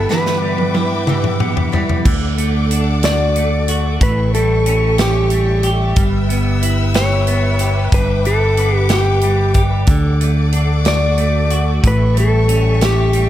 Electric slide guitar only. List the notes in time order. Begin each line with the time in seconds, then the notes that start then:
Already playing: A4
0.11 B4
3.05 D5
4.03 B4
4.35 A4
5.01 G4
6.95 C#5
7.94 B4
8.27 A4
8.77 G4
8.94 G4
10.88 D5
11.87 B4
12.20 A4
12.85 G4